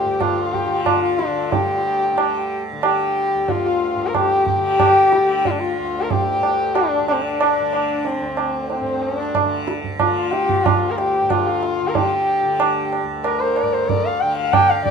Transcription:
Already playing: tanpura D2 D3, sarangi G4
0.04 tanpura G2, harmonium G4
0.21 sarangi F4, tabla na, tabla ge
0.36 harmonium F4
0.54 sarangi G4, tabla ge
0.65 tanpura D3
0.86 sarangi F4, tabla na, tabla ge
1.02 harmonium F4
1.19 tabla te
1.27 tanpura D3, sarangi D4
1.51 tanpura G2, sarangi G4, tabla tin, tabla ge
1.66 harmonium G4
1.74 harmonium F4
1.82 harmonium G4
2.12 tanpura D3
2.18 tabla na
2.73 tanpura D3
2.83 sarangi G4, tabla na
2.99 harmonium G4
3.35 tanpura D2
3.48 sarangi F4, tabla tin, tabla ge
3.65 harmonium F4
3.95 tanpura G2
4.07 sarangi A#4
4.15 sarangi G4, tabla na, tabla ge
4.30 harmonium G4
4.47 sarangi G4, tabla ge
4.57 tanpura D3
4.62 harmonium G4
4.80 tabla na, tabla ge
5.12 tabla te
5.17 tanpura D3
5.45 sarangi F4, tabla tin, tabla ge
5.51 sarangi D4
5.59 sarangi F4, harmonium F4
5.74 harmonium F4
5.79 tanpura D2
6.02 sarangi A#4
6.11 sarangi G4, tabla tin, tabla ge
6.26 harmonium G4
6.39 tanpura G2
6.43 tabla na
6.75 sarangi D4, tabla na
6.90 harmonium D4
7.00 tanpura D3
7.08 sarangi D4, tabla na
7.13 sarangi C4
7.23 sarangi D4, harmonium D4
7.38 harmonium D4, tabla na
7.59 tanpura D3
7.73 tabla na
8.05 sarangi C4, tabla tin
8.21 tanpura D2, harmonium C4
8.37 tabla na
8.70 sarangi C4, tabla tin
8.81 tanpura G2, harmonium C4
9.03 sarangi C#4
9.18 sarangi D4, harmonium D4
9.35 tabla na, tabla ge
9.42 tanpura D3
9.68 tabla te
9.84 tabla ge
9.99 tanpura D3, sarangi F4, tabla na, tabla ge
10.16 harmonium F4
10.31 sarangi G4, tabla te
10.49 tabla ge
10.62 tanpura D2, sarangi F4, tabla na, tabla ge
10.80 harmonium F4
10.90 sarangi A#4
10.97 sarangi G4, tabla te
11.14 harmonium G4
11.22 tanpura G2
11.30 sarangi F4, tabla na, tabla ge
11.46 harmonium F4
11.63 tabla te
11.82 tanpura D3
11.88 sarangi A#4
11.95 sarangi G4, tabla tin, tabla ge
12.10 harmonium G4
12.43 tanpura D3
12.60 tabla na
12.93 tabla na
13.03 tanpura D2
13.24 sarangi A#4, tabla na
13.40 harmonium A#4, sarangi C5
13.56 sarangi D5, tabla na
13.62 tanpura G2
13.73 sarangi C5
13.88 sarangi D5, tabla tin, tabla ge
14.05 harmonium D5, sarangi F5
14.20 tanpura D3, harmonium F5, sarangi G5
14.37 sarangi F5
14.53 harmonium F5, sarangi G5, tabla na, tabla ge
14.69 sarangi F5, harmonium G5
14.83 tanpura D3, sarangi D5, tabla ge

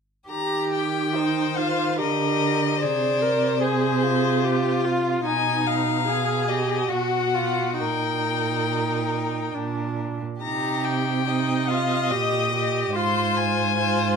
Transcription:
0.29 cello D#3, violin G4 A#5, viola G4
0.74 violin G5
1.15 viola D#4, violin C5
1.57 viola F4, violin F5
1.98 cello D3, viola G4, violin A#4 D#5
2.80 cello C3, viola G#4, violin C5 D5
3.22 viola A#4
3.62 violin G#4 C5, viola G#4
4.03 violin F4
4.45 viola G4
4.85 viola F4
5.26 cello B2, violin D#4 G#5, viola D#4
5.67 violin F5
6.07 viola G#4, violin G#4
6.48 viola G4, violin D#5
6.90 cello B2, violin F#4 F#5, viola F#4
7.35 viola F4
7.78 cello A#2, viola D#4, violin A#4 G5
9.55 cello A#2, viola D4
10.42 cello C3, viola D#4, violin G4 A#5
10.84 violin G5
11.27 viola D#4, violin D#5
11.68 viola F4, violin F5
12.10 cello A#2, viola G4, violin D#5
12.54 viola G4
12.94 cello G#2, viola F4, violin C5 C6
13.36 violin G#5
13.77 viola F4, violin C5

